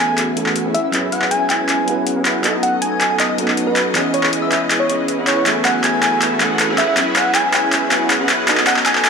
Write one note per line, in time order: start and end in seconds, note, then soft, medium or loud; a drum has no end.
0.00 0.73 F#1 medium
0.00 0.33 E3 medium
0.00 0.73 F#3 medium
0.00 0.34 A3 medium
0.00 0.73 A3 medium
0.00 0.34 B3 medium
0.00 0.35 B3 medium
0.00 0.35 C#4 medium
0.00 2.41 C#4 medium
0.00 2.41 E4 medium
0.00 0.34 F#4 medium
0.00 0.34 G#4 medium
0.00 0.34 A4 medium
0.00 0.73 B4 medium
0.00 0.34 E5 loud
0.00 0.35 G#5 medium
0.00 0.73 G#5 medium
0.08 0.14 G#5 medium
0.18 clap soft
0.18 closed hi-hat medium
0.36 0.73 E3 medium
0.36 0.73 A3 medium
0.36 0.63 B3 medium
0.36 0.73 B3 medium
0.36 0.73 C#4 medium
0.36 0.63 F#4 medium
0.36 0.63 G#4 medium
0.36 0.63 A4 medium
0.36 0.74 A4 medium
0.36 0.63 F#5 loud
0.36 closed hi-hat medium
0.46 clap soft
0.56 closed hi-hat medium
0.65 0.91 C#4 loud
0.65 0.91 E4 medium
0.65 0.91 G#4 medium
0.65 0.91 B4 medium
0.65 0.91 F#5 loud
0.74 2.42 G#1 medium
0.74 2.43 G#3 medium
0.74 0.80 E5 medium
0.74 closed hi-hat medium
0.84 0.90 E5 medium
0.91 1.84 F#3 medium
0.91 1.85 B3 medium
0.91 1.85 C#4 medium
0.91 1.85 E4 medium
0.91 1.86 E4 medium
0.91 1.85 G#4 medium
0.91 1.85 B4 medium
0.91 1.85 E5 loud
0.91 clap soft
0.91 closed hi-hat medium
0.95 1.86 G#4 medium
1.12 1.26 F#5 medium
1.12 closed hi-hat medium
1.22 clap soft
1.31 1.45 G#5 loud
1.31 closed hi-hat medium
1.50 2.03 G#5 loud
1.50 clap medium
1.50 closed hi-hat medium
1.69 clap medium
1.69 closed hi-hat medium
1.85 2.41 F#3 medium
1.85 2.41 B3 medium
1.85 2.42 C#4 medium
1.85 2.14 C#4 medium
1.85 2.14 E4 medium
1.85 2.42 E4 medium
1.85 2.14 G#4 medium
1.85 2.14 B4 medium
1.85 2.14 F#5 loud
1.85 closed hi-hat medium
1.89 2.43 B4 medium
2.07 closed hi-hat medium
2.16 2.42 C#4 loud
2.16 2.42 E4 medium
2.16 2.42 G#4 medium
2.16 2.42 B4 medium
2.16 2.42 F#5 loud
2.25 clap medium
2.25 closed hi-hat medium
2.42 3.93 B1 medium
2.42 3.35 F#3 medium
2.42 3.94 A3 medium
2.42 3.36 B3 medium
2.42 5.43 B3 medium
2.42 3.36 B3 medium
2.42 3.36 C#4 medium
2.42 3.36 D#4 medium
2.42 3.37 D#4 medium
2.42 3.36 F#4 medium
2.42 3.36 A4 medium
2.42 3.36 D#5 loud
2.42 5.43 D#5 medium
2.42 clap medium
2.42 closed hi-hat medium
2.46 3.37 A4 medium
2.63 2.77 F#5 medium
2.63 closed hi-hat medium
2.82 2.88 G#5 medium
2.82 closed hi-hat medium
2.91 2.98 G#5 medium
3.01 3.07 G#5 medium
3.01 clap medium
3.01 closed hi-hat medium
3.10 3.16 G#5 medium
3.20 3.26 D#5 medium
3.20 clap medium
3.20 closed hi-hat medium
3.29 3.35 D#5 medium
3.37 3.92 F#3 medium
3.37 3.92 B3 medium
3.37 3.65 B3 loud
3.37 3.93 C#4 medium
3.37 3.65 D#4 medium
3.37 3.93 D#4 medium
3.37 3.65 F#4 medium
3.37 3.65 A4 medium
3.37 3.94 B4 medium
3.37 3.65 F#5 loud
3.37 closed hi-hat medium
3.48 clap medium
3.57 closed hi-hat medium
3.67 3.93 B3 loud
3.67 3.93 D#4 medium
3.67 3.93 F#4 medium
3.67 3.93 A4 medium
3.67 3.81 B4 medium
3.67 3.93 F#5 loud
3.76 clap medium
3.76 closed hi-hat medium
3.93 5.44 C#2 medium
3.93 5.45 C#3 medium
3.93 4.86 E3 medium
3.93 5.45 G#3 medium
3.93 4.87 B3 medium
3.93 4.87 C#4 medium
3.93 4.87 E4 medium
3.93 8.44 E4 medium
3.93 4.87 G#4 medium
3.93 4.87 B4 medium
3.93 4.87 D#5 loud
3.93 4.88 D#5 medium
3.93 clap medium
3.93 closed hi-hat medium
3.97 4.88 G#4 medium
4.14 4.20 C#5 medium
4.14 closed hi-hat medium
4.23 4.30 C#5 medium
4.23 clap medium
4.33 closed hi-hat medium
4.42 4.48 E5 medium
4.52 4.58 E5 medium
4.52 clap medium
4.52 closed hi-hat medium
4.71 clap medium
4.71 closed hi-hat medium
4.80 4.86 C#5 medium
4.89 5.16 C#4 medium
4.89 5.16 E4 medium
4.89 5.16 G#4 medium
4.89 5.16 B4 medium
4.89 4.96 C#5 medium
4.89 5.16 D#5 medium
4.89 closed hi-hat medium
5.08 closed hi-hat medium
5.18 5.44 C#4 medium
5.18 5.44 E4 medium
5.18 5.44 G#4 medium
5.18 5.44 B4 medium
5.18 5.44 F#5 medium
5.27 5.33 C#5 medium
5.27 clap medium
5.27 closed hi-hat medium
5.37 5.43 C#5 medium
5.44 6.37 E3 medium
5.44 6.77 F#3 medium
5.44 6.38 A3 medium
5.44 6.77 A3 medium
5.44 6.38 B3 medium
5.44 6.77 C#4 medium
5.44 6.39 C#4 medium
5.44 6.38 F#4 medium
5.44 6.38 G#4 medium
5.44 6.38 A4 medium
5.44 6.77 B4 medium
5.44 6.38 E5 loud
5.44 6.77 G#5 medium
5.44 6.39 G#5 medium
5.44 clap medium
5.44 closed hi-hat medium
5.65 5.79 F#5 medium
5.65 clap medium
5.65 closed hi-hat medium
5.84 5.90 G#5 medium
5.84 clap medium
5.84 closed hi-hat medium
5.93 5.99 G#5 medium
6.03 6.09 G#5 medium
6.03 clap medium
6.03 closed hi-hat medium
6.12 6.18 G#5 medium
6.22 clap medium
6.22 closed hi-hat medium
6.39 6.76 E3 medium
6.39 6.77 A3 medium
6.39 6.77 B3 medium
6.39 6.67 B3 loud
6.39 6.77 C#4 medium
6.39 6.67 F#4 medium
6.39 6.67 G#4 medium
6.39 6.66 A4 medium
6.39 6.77 A4 medium
6.39 6.67 F#5 loud
6.39 clap medium
6.39 closed hi-hat medium
6.59 clap medium
6.59 closed hi-hat medium
6.69 6.95 C#4 loud
6.69 6.95 E4 medium
6.69 6.95 G#4 medium
6.69 6.95 B4 medium
6.69 6.95 F#5 loud
6.78 8.46 G#1 medium
6.78 8.46 G#3 medium
6.78 8.46 C#4 medium
6.78 6.84 E5 medium
6.78 clap medium
6.78 closed hi-hat medium
6.88 6.94 E5 medium
6.95 7.88 F#3 medium
6.95 7.89 B3 medium
6.95 7.89 C#4 medium
6.95 7.89 E4 medium
6.95 7.90 E4 medium
6.95 7.89 G#4 medium
6.95 7.90 G#4 medium
6.95 7.89 B4 medium
6.95 7.89 E5 loud
6.95 clap medium
6.95 closed hi-hat medium
7.16 7.30 F#5 loud
7.16 clap medium
7.16 closed hi-hat medium
7.35 7.49 G#5 loud
7.35 clap medium
7.35 closed hi-hat medium
7.54 8.07 G#5 loud
7.54 clap medium
7.54 closed hi-hat medium
7.73 clap medium
7.73 closed hi-hat medium
7.89 8.45 F#3 medium
7.89 8.45 B3 medium
7.89 8.46 C#4 medium
7.89 8.17 C#4 medium
7.89 8.17 E4 medium
7.89 8.46 E4 medium
7.89 8.17 G#4 medium
7.89 8.17 B4 medium
7.89 8.17 F#5 loud
7.89 clap medium
7.89 closed hi-hat medium
7.93 8.47 B4 medium
8.10 clap medium
8.10 closed hi-hat medium
8.20 8.46 C#4 loud
8.20 8.46 E4 medium
8.20 8.46 G#4 medium
8.20 8.46 B4 medium
8.20 8.46 F#5 loud
8.29 clap medium
8.29 closed hi-hat medium
8.46 9.10 B1 medium
8.46 9.10 F#3 medium
8.46 9.10 A3 medium
8.46 9.10 B3 medium
8.46 9.10 C#4 medium
8.46 9.10 D#4 medium
8.46 9.10 F#4 medium
8.46 9.10 A4 medium
8.46 9.10 D#5 loud
8.46 clap medium
8.46 closed hi-hat medium
8.50 9.10 A4 loud
8.58 clap medium
8.67 8.81 F#5 medium
8.67 clap medium
8.67 closed hi-hat medium
8.76 clap medium
8.86 8.92 G#5 medium
8.86 clap medium
8.86 closed hi-hat medium
8.95 9.01 G#5 medium
8.95 clap medium
9.04 9.10 G#5 medium
9.04 clap medium
9.04 closed hi-hat medium